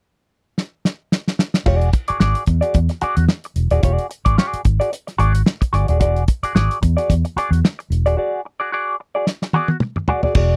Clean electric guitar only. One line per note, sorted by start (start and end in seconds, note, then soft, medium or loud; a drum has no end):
1.66 1.88 F#4 medium
1.66 1.89 G#4 medium
1.66 1.89 D5 medium
1.94 muted clean electric guitar stroke soft
2.08 2.19 F#4 soft
2.08 2.20 G#4 medium
2.08 2.21 D5 soft
2.20 2.42 F#4 medium
2.20 2.43 G#4 medium
2.20 2.43 D5 medium
2.48 muted clean electric guitar stroke soft
2.61 2.78 F#4 soft
2.61 2.78 G#4 medium
2.61 2.77 D5 medium
2.90 muted clean electric guitar stroke soft
3.02 3.24 F#4 medium
3.02 3.18 G#4 medium
3.02 3.17 D5 medium
3.18 muted clean electric guitar stroke soft
3.30 muted clean electric guitar stroke soft
3.45 muted clean electric guitar stroke soft
3.71 3.81 F#4 medium
3.71 3.83 G#4 medium
3.71 3.83 D5 medium
3.83 4.05 F#4 medium
3.83 4.06 G#4 medium
3.83 4.06 D5 medium
4.09 muted clean electric guitar stroke soft
4.25 4.36 F#4 soft
4.25 4.37 G#4 soft
4.25 4.38 D5 medium
4.38 4.60 F#4 medium
4.38 4.60 G#4 medium
4.38 4.61 D5 medium
4.66 muted clean electric guitar stroke soft
4.80 4.91 F#4 medium
4.80 4.92 G#4 medium
4.80 4.93 D5 medium
4.92 muted clean electric guitar stroke soft
5.07 muted clean electric guitar stroke soft
5.18 5.41 F#4 medium
5.18 5.35 G#4 medium
5.18 5.34 D5 medium
5.35 muted clean electric guitar stroke soft
5.46 muted clean electric guitar stroke soft
5.61 muted clean electric guitar stroke medium
5.73 5.90 F#4 medium
5.73 5.89 G#4 medium
5.73 5.87 D5 medium
5.89 5.99 F#4 soft
5.89 5.99 G#4 medium
5.89 6.01 D5 medium
6.00 6.22 F#4 medium
6.00 6.23 G#4 medium
6.00 6.23 D5 medium
6.28 muted clean electric guitar stroke soft
6.43 6.54 F#4 soft
6.43 6.55 G#4 soft
6.43 6.56 D5 medium
6.55 6.77 F#4 medium
6.55 6.77 G#4 medium
6.55 6.78 D5 medium
6.82 muted clean electric guitar stroke soft
6.97 7.14 F#4 soft
6.97 7.13 G#4 soft
6.97 7.13 D5 medium
7.25 muted clean electric guitar stroke soft
7.37 7.59 F#4 medium
7.37 7.52 G#4 medium
7.37 7.51 D5 medium
7.52 muted clean electric guitar stroke soft
7.64 muted clean electric guitar stroke soft
7.79 muted clean electric guitar stroke medium
8.06 8.16 F#4 medium
8.06 8.17 G#4 medium
8.06 8.17 D5 medium
8.17 8.40 F#4 medium
8.17 8.40 G#4 medium
8.17 8.40 D5 medium
8.45 muted clean electric guitar stroke soft
8.60 8.71 F#4 soft
8.60 8.72 G#4 soft
8.60 8.73 D5 soft
8.72 8.94 F#4 medium
8.72 8.95 G#4 medium
8.72 8.95 D5 medium
9.00 muted clean electric guitar stroke soft
9.15 9.26 F#4 soft
9.15 9.27 G#4 medium
9.15 9.28 D5 medium
9.43 muted clean electric guitar stroke soft
9.54 9.76 F#4 medium
9.54 9.71 G#4 medium
9.54 9.70 D5 medium
9.71 muted clean electric guitar stroke soft
9.82 muted clean electric guitar stroke soft
9.97 muted clean electric guitar stroke soft
10.09 10.24 F#4 medium
10.09 10.23 G#4 medium
10.09 10.22 D5 medium
10.23 10.35 F#4 soft
10.23 10.35 G#4 medium
10.23 10.36 D5 medium
10.36 10.56 F#4 medium
10.36 10.56 G#4 medium
10.36 10.56 D5 loud